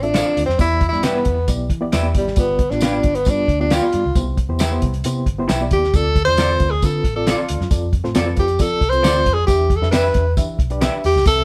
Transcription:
Already playing: A1
0.02 C4 D4 F4 A4 E5, closed hi-hat
0.14 D4 A4 C5 F5, snare, closed hi-hat, tambourine
0.26 C4 F4 A4 D5
0.37 D2, closed hi-hat
0.46 F2 C4, snare
0.58 E2 E3 B3 E4 G4 D5, kick, closed hi-hat, tambourine
0.81 kick, closed hi-hat
0.89 B3 E4 G4, snare
0.93 G2 E4 D5
1.03 B3 D4 G4 B4 E5, snare, closed hi-hat, tambourine
1.15 B3 E4 G4 B4
1.25 E2, kick, closed hi-hat
1.48 B1 B3 E4 G4 D5, kick, closed hi-hat, tambourine
1.70 E3, kick, closed hi-hat
1.81 B3 E4 G4 D5
1.92 E2 D4 G4 B4 E5, snare, closed hi-hat, tambourine
2.03 B3 E4 G4 D5
2.15 G#1 G3, kick, closed hi-hat
2.27 snare
2.36 G1 G2 B3 F4 G4 D5, kick, closed hi-hat, tambourine
2.59 kick, closed hi-hat
2.70 A1 B3 D4 F4 G4 D5, snare
2.81 D4 G4 B4 F5, snare, closed hi-hat, tambourine
2.92 B3 F4 G4 D5
3.03 G1, kick, closed hi-hat
3.15 B3, closed hi-hat
3.25 G2 B3 F4 G4 B4, kick, closed hi-hat, tambourine
3.30 D4
3.48 D2, kick, closed hi-hat
3.60 B3 D4 F4 G4 D5
3.70 D4 G4 B4 F5, snare, closed hi-hat, tambourine
3.75 F4
3.82 B3 F4 G4 D5
3.93 G2, closed hi-hat
4.06 C#2
4.15 C2 C3 B3 E4 G4 C5, kick, closed hi-hat, tambourine
4.37 kick, closed hi-hat
4.49 E2 B3 E4 G4 C5
4.59 E4 G4 B4 E5, snare, closed hi-hat, tambourine
4.72 B3 E4 G4 C5
4.82 C2, kick, closed hi-hat
4.94 closed hi-hat
5.04 C3 B3 E4 G4 C5, closed hi-hat, tambourine
5.26 G1, kick, closed hi-hat
5.38 B3 E4 G4 C5
5.48 B1 E4 G4 B4 E5, snare, closed hi-hat, tambourine
5.60 B3 E4 G4 D5
5.71 D#2 G4, kick, closed hi-hat
5.84 snare
5.94 D2 D3 C4 F4 A4 D5, kick, closed hi-hat, tambourine
6.16 kick, closed hi-hat
6.25 E2 C4 F4 A4 C5 D5
6.37 C4 F4 A4 D5, snare, closed hi-hat, tambourine
6.50 C4 F4 A4 B4
6.60 D2, kick, closed hi-hat
6.71 G#4
6.82 D3 C4 F4 A4 B4, kick, closed hi-hat, tambourine
7.04 A1, kick, closed hi-hat
7.16 C4 F4 A4 D5
7.26 C4 F4 A4 D5, snare, closed hi-hat, tambourine
7.31 F4
7.37 C4 F4 A4 D5
7.49 D2, closed hi-hat
7.61 F#2, snare
7.70 F2 C4 F4 A4 D5, kick, closed hi-hat, tambourine
7.93 kick, closed hi-hat
8.04 A2 C4 F4 A4 C5, snare
8.15 F2 C4 F4 A4 D5, snare, closed hi-hat, tambourine
8.26 C4 F4 A4 B4
8.37 F2 G4, kick, closed hi-hat
8.48 closed hi-hat
8.59 F3 C4 F4 A4 D5, kick, closed hi-hat, tambourine
8.81 C2, kick, closed hi-hat
8.89 C4 F4 A4 B4 C5, closed hi-hat
9.03 D2 C4 F4 A4 D5, snare, closed hi-hat, tambourine
9.15 C4 F4 A4 D5
9.26 F2, kick, closed hi-hat
9.33 G#4
9.47 E2 E3 D4 G4 B4 E5, kick, closed hi-hat, tambourine
9.70 kick, closed hi-hat
9.76 A4
9.81 F2 D4 G4 B4 E5, snare
9.91 D4 G4 B4 E5, snare, closed hi-hat, tambourine
10.03 D4 G4 B4 E5
10.14 E2, kick, snare, closed hi-hat
10.37 E3 D4 G4 B4 E5, kick, closed hi-hat, tambourine
10.59 B1, kick, closed hi-hat
10.70 D4 G4 B4 D5, closed hi-hat
10.81 D4 G4 B4 E5, snare, closed hi-hat, tambourine
10.92 D4 G4 B4 E5
11.04 E2 G4, open hi-hat
11.16 C#2, snare
11.26 C2 C3 C4 G4 A4 B4 E5, kick, closed hi-hat, tambourine

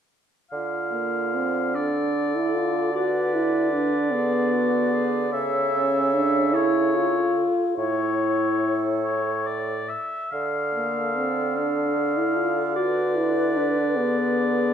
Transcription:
0.51 D3 F4 F5
0.92 A#3
1.35 C4
1.75 D4 A4 D5
2.36 E4
2.55 F4
2.95 F#4 B4 D5
3.34 E4
3.73 D4
4.11 B3 G#4 B4
4.53 F#4
4.92 G#4
5.32 C#3 A4 C#5 E5
5.73 C#4
6.14 D4
6.53 E4 A4 C#5
6.95 F4
7.77 A2 E4 A4 C#5
9.04 C#5
9.47 D5
9.89 E5
10.32 D3 A4 F5
10.75 A#3
11.16 C4
11.56 D4 A4 F5
12.17 E4
12.36 F4
12.76 F#4 B4 D5
13.16 E4
13.57 D4
13.96 B3 G#4

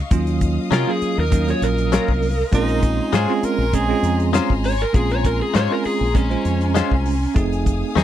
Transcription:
Already playing: D#5 F5
0.10 D#2 F#3 A#3 C#4 F4 D#6, kick, closed hi-hat
0.27 closed hi-hat
0.41 kick, closed hi-hat
0.71 C3 F#3 C#4 F4 A#4, snare, closed hi-hat
0.87 F#3 A#3 C#4 F4 G#4
1.02 muted fingered electric bass stroke, closed hi-hat
1.18 D#2 A#4
1.31 F#3 A#3 C#4 D#4, kick, closed hi-hat
1.47 F#3 A#3 C#4 F4 C#5, closed hi-hat
1.62 A#1 A#4, closed hi-hat
1.78 closed hi-hat
1.92 F#3 C#4 F4 A#4, snare, closed hi-hat
2.08 C2, kick
2.22 open hi-hat
2.40 snare
2.52 A#1 G#3 C4 C#4 D#4 F4 G#5 A#5 C6, kick, closed hi-hat
2.68 closed hi-hat
2.83 kick, closed hi-hat
3.13 G#2 G#3 C#4 F4 G#4 C5, snare, closed hi-hat
3.28 G#3 C4 C#4 F4
3.43 A#4, muted fingered electric bass stroke, closed hi-hat
3.58 A#1
3.73 G#3 C4 C#4 G#4, kick, closed hi-hat
3.89 G#3 C4 C#4 F4
4.03 F2, closed hi-hat
4.20 closed hi-hat
4.33 G#3 C#4 F4 C5, snare, closed hi-hat
4.50 G#1, kick
4.64 C#5, open hi-hat
4.80 A#4, snare, closed hi-hat
4.93 A#1 G#3 C4 C#4 F4 G#4, kick, closed hi-hat
5.10 C#5, snare, closed hi-hat
5.24 A#4, kick, closed hi-hat
5.42 G#4
5.54 G#2 G#3 C#4 F4 C5 C#5, snare, closed hi-hat
5.70 G#3 C4 C#4 F4 A#4
5.84 G#4, muted fingered electric bass stroke, open hi-hat
6.01 A#1
6.14 G#3 C4 C#4 G#4, kick, closed hi-hat
6.30 G#3 C#4 F4 C5, closed hi-hat
6.45 F2, closed hi-hat
6.61 closed hi-hat
6.75 G#3 C#4 F4 C5, snare, closed hi-hat
6.91 C2, kick
7.06 open hi-hat
7.35 F1 A3 C4 D#4 G#4 F5 D#6, kick, closed hi-hat
7.53 closed hi-hat
7.66 kick, closed hi-hat
7.96 D#2 A3 C4 D#4 G#4, snare, closed hi-hat

